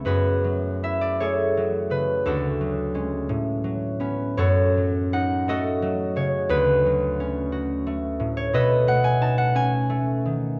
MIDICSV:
0, 0, Header, 1, 2, 480
1, 0, Start_track
1, 0, Key_signature, 3, "minor"
1, 0, Tempo, 789474
1, 21, Time_signature, 6, 3, 24, 8
1, 501, Tempo, 730816
1, 981, Tempo, 700117
1, 2421, Tempo, 746269
1, 3381, Tempo, 680272
1, 7225, End_track
2, 0, Start_track
2, 0, Title_t, "Harp"
2, 0, Program_c, 0, 46
2, 0, Note_on_c, 0, 57, 41
2, 0, Note_on_c, 0, 59, 43
2, 0, Note_on_c, 0, 61, 39
2, 0, Note_on_c, 0, 69, 48
2, 0, Note_on_c, 0, 73, 73
2, 29, Note_on_c, 0, 42, 57
2, 34, Note_on_c, 0, 71, 81
2, 39, Note_on_c, 0, 66, 61
2, 42, Note_on_c, 0, 68, 55
2, 268, Note_on_c, 0, 54, 45
2, 505, Note_on_c, 0, 64, 43
2, 509, Note_on_c, 0, 76, 82
2, 624, Note_on_c, 0, 74, 81
2, 740, Note_off_c, 0, 73, 0
2, 742, Note_off_c, 0, 57, 0
2, 748, Note_on_c, 0, 57, 49
2, 749, Note_off_c, 0, 69, 0
2, 750, Note_on_c, 0, 73, 79
2, 751, Note_off_c, 0, 68, 0
2, 757, Note_on_c, 0, 68, 64
2, 759, Note_on_c, 0, 69, 63
2, 828, Note_off_c, 0, 74, 0
2, 984, Note_off_c, 0, 54, 0
2, 992, Note_on_c, 0, 54, 56
2, 1214, Note_off_c, 0, 71, 0
2, 1218, Note_on_c, 0, 49, 43
2, 1225, Note_on_c, 0, 71, 76
2, 1458, Note_off_c, 0, 69, 0
2, 1462, Note_on_c, 0, 38, 56
2, 1464, Note_off_c, 0, 66, 0
2, 1466, Note_on_c, 0, 69, 78
2, 1471, Note_on_c, 0, 62, 60
2, 1474, Note_on_c, 0, 66, 61
2, 1484, Note_off_c, 0, 49, 0
2, 1485, Note_off_c, 0, 71, 0
2, 1489, Note_off_c, 0, 76, 0
2, 1490, Note_off_c, 0, 64, 0
2, 1492, Note_off_c, 0, 42, 0
2, 1494, Note_off_c, 0, 59, 0
2, 1696, Note_off_c, 0, 54, 0
2, 1705, Note_on_c, 0, 54, 45
2, 1928, Note_off_c, 0, 61, 0
2, 1935, Note_on_c, 0, 56, 43
2, 1938, Note_on_c, 0, 61, 47
2, 2171, Note_on_c, 0, 45, 63
2, 2198, Note_off_c, 0, 56, 0
2, 2200, Note_off_c, 0, 38, 0
2, 2210, Note_off_c, 0, 68, 0
2, 2403, Note_off_c, 0, 54, 0
2, 2411, Note_on_c, 0, 54, 56
2, 2638, Note_off_c, 0, 61, 0
2, 2642, Note_on_c, 0, 59, 48
2, 2647, Note_on_c, 0, 61, 52
2, 2649, Note_off_c, 0, 62, 0
2, 2876, Note_off_c, 0, 73, 0
2, 2883, Note_off_c, 0, 69, 0
2, 2883, Note_on_c, 0, 42, 65
2, 2884, Note_off_c, 0, 66, 0
2, 2885, Note_on_c, 0, 73, 90
2, 2890, Note_on_c, 0, 66, 64
2, 2893, Note_on_c, 0, 69, 72
2, 2901, Note_off_c, 0, 45, 0
2, 2905, Note_off_c, 0, 59, 0
2, 3133, Note_off_c, 0, 54, 0
2, 3141, Note_on_c, 0, 54, 49
2, 3351, Note_off_c, 0, 57, 0
2, 3369, Note_on_c, 0, 78, 95
2, 3372, Note_on_c, 0, 63, 54
2, 3612, Note_on_c, 0, 57, 61
2, 3616, Note_off_c, 0, 66, 0
2, 3617, Note_off_c, 0, 69, 0
2, 3619, Note_on_c, 0, 75, 95
2, 3623, Note_on_c, 0, 66, 78
2, 3626, Note_on_c, 0, 69, 70
2, 3847, Note_off_c, 0, 54, 0
2, 3856, Note_on_c, 0, 54, 64
2, 4088, Note_off_c, 0, 73, 0
2, 4094, Note_on_c, 0, 49, 55
2, 4099, Note_on_c, 0, 73, 88
2, 4330, Note_on_c, 0, 38, 71
2, 4336, Note_on_c, 0, 71, 102
2, 4360, Note_off_c, 0, 49, 0
2, 4360, Note_off_c, 0, 63, 0
2, 4360, Note_off_c, 0, 75, 0
2, 4363, Note_off_c, 0, 42, 0
2, 4581, Note_off_c, 0, 54, 0
2, 4590, Note_on_c, 0, 54, 56
2, 4820, Note_off_c, 0, 61, 0
2, 4828, Note_on_c, 0, 61, 57
2, 5047, Note_off_c, 0, 66, 0
2, 5056, Note_on_c, 0, 66, 61
2, 5290, Note_off_c, 0, 57, 0
2, 5298, Note_on_c, 0, 57, 65
2, 5533, Note_on_c, 0, 45, 52
2, 5647, Note_off_c, 0, 73, 0
2, 5655, Note_on_c, 0, 73, 96
2, 5770, Note_off_c, 0, 71, 0
2, 5771, Note_on_c, 0, 47, 70
2, 5773, Note_off_c, 0, 69, 0
2, 5777, Note_on_c, 0, 75, 97
2, 5780, Note_on_c, 0, 69, 78
2, 5780, Note_on_c, 0, 71, 77
2, 5786, Note_off_c, 0, 38, 0
2, 5790, Note_off_c, 0, 45, 0
2, 5857, Note_off_c, 0, 73, 0
2, 6005, Note_off_c, 0, 57, 0
2, 6005, Note_off_c, 0, 78, 0
2, 6011, Note_on_c, 0, 57, 55
2, 6016, Note_on_c, 0, 78, 95
2, 6129, Note_on_c, 0, 80, 99
2, 6251, Note_on_c, 0, 63, 53
2, 6253, Note_on_c, 0, 81, 99
2, 6337, Note_off_c, 0, 80, 0
2, 6359, Note_off_c, 0, 78, 0
2, 6368, Note_on_c, 0, 78, 101
2, 6482, Note_off_c, 0, 61, 0
2, 6488, Note_on_c, 0, 61, 60
2, 6494, Note_on_c, 0, 80, 106
2, 6579, Note_off_c, 0, 78, 0
2, 6723, Note_off_c, 0, 57, 0
2, 6731, Note_on_c, 0, 57, 61
2, 6985, Note_on_c, 0, 51, 46
2, 7225, Note_off_c, 0, 47, 0
2, 7225, Note_off_c, 0, 51, 0
2, 7225, Note_off_c, 0, 54, 0
2, 7225, Note_off_c, 0, 57, 0
2, 7225, Note_off_c, 0, 61, 0
2, 7225, Note_off_c, 0, 63, 0
2, 7225, Note_off_c, 0, 66, 0
2, 7225, Note_off_c, 0, 69, 0
2, 7225, Note_off_c, 0, 71, 0
2, 7225, Note_off_c, 0, 75, 0
2, 7225, Note_off_c, 0, 80, 0
2, 7225, Note_off_c, 0, 81, 0
2, 7225, End_track
0, 0, End_of_file